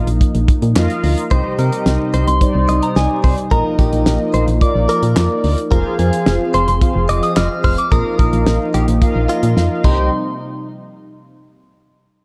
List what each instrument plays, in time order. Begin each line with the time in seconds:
Already playing: analog synth pad F3 A#3 D#4
0.07 fm bass A#1, closed hi-hat
0.21 kick, closed hi-hat
0.35 fm bass A#1, closed hi-hat
0.48 kick, closed hi-hat
0.62 fm bass A#2, closed hi-hat
0.76 fm bass F2, analog polysynth F4 A#4 D#5 F5, snare, clap
0.90 closed hi-hat
1.04 fm bass D2, open hi-hat
1.18 closed hi-hat
1.31 fm bass C2, analog synth pad C3 G3 D#4, analog polysynth D#4 G4 C5 D#5, clean electric guitar C5, kick, closed hi-hat
1.59 fm bass C3, clean electric guitar A#4, closed hi-hat
1.73 closed hi-hat
1.86 fm bass C2, snare, closed hi-hat
2.14 fm bass C2, clean electric guitar C5, synth bell C6, closed hi-hat
2.27 fm bass C2, synth bell C6, closed hi-hat
2.41 analog polysynth G3 D#4 C5 D5, kick, closed hi-hat
2.55 fm bass C2
2.69 fm bass C2, clean electric guitar D#5, closed hi-hat
2.82 synth bell A#5, closed hi-hat
2.96 fm bass C2, clean electric guitar D#5, synth bell G#5, snare, closed hi-hat
3.24 fm bass C2, clean electric guitar C5, kick, open hi-hat
3.38 closed hi-hat
3.51 fm bass A#1, analog synth pad F3 A#3, analog polysynth D#4 F4 A#4 D#5, clean electric guitar A#4, synth bell A#5, kick, closed hi-hat
3.79 fm bass A#1, clean electric guitar G4, kick, closed hi-hat
3.93 fm bass A#1, closed hi-hat
4.06 fm bass A#1, snare, closed hi-hat
4.34 fm bass A#1, clean electric guitar C5, closed hi-hat
4.48 fm bass A#1, closed hi-hat
4.61 analog polysynth D#4 F4 A#4 D5, synth bell D6, kick, closed hi-hat
4.75 fm bass A#1
4.89 clean electric guitar A#4, closed hi-hat
5.03 fm bass A#2, closed hi-hat
5.16 fm bass F2, snare, clap, closed hi-hat
5.44 fm bass D2, open hi-hat
5.58 closed hi-hat
5.71 fm bass F1, analog synth pad F3 C4 G#4, analog polysynth F4 G#4 C5 F5, clean electric guitar A#4, kick, closed hi-hat
5.99 fm bass F2, clean electric guitar G#4, closed hi-hat
6.13 closed hi-hat
6.26 fm bass F1, snare, closed hi-hat
6.54 fm bass F1, clean electric guitar C5, synth bell C6, closed hi-hat
6.68 fm bass F1, synth bell C6, closed hi-hat
6.81 analog polysynth F4 G#4 C5 F5, kick, closed hi-hat
6.95 fm bass F1
7.09 fm bass F1, clean electric guitar D#5, synth bell D6, closed hi-hat
7.23 synth bell D#6, closed hi-hat
7.37 fm bass F1, clean electric guitar D#5, synth bell F6, snare, clap, closed hi-hat
7.64 fm bass F1, clean electric guitar C5, synth bell F6, kick, open hi-hat
7.78 synth bell D6, closed hi-hat
7.92 fm bass A#1, analog synth pad F3 A#3 D#4, analog polysynth F4 A#4 D#5 F5, clean electric guitar A#4, synth bell D#6, kick, closed hi-hat
8.19 fm bass A#1, clean electric guitar A#4, kick, closed hi-hat
8.33 fm bass A#1, closed hi-hat
8.46 fm bass A#1, snare, closed hi-hat
8.74 fm bass A#1, clean electric guitar G4, closed hi-hat
8.88 fm bass A#1, closed hi-hat
9.02 analog polysynth F4 A#4 D#5 F5, kick, closed hi-hat
9.15 fm bass A#1
9.29 clean electric guitar F4, closed hi-hat
9.43 fm bass A#2, closed hi-hat
9.57 fm bass F2, snare
9.84 fm bass C2, analog synth pad C3 G3 D#4, clean electric guitar D#4, analog polysynth G4 C5 D#5 G5, synth bell C6, kick, crash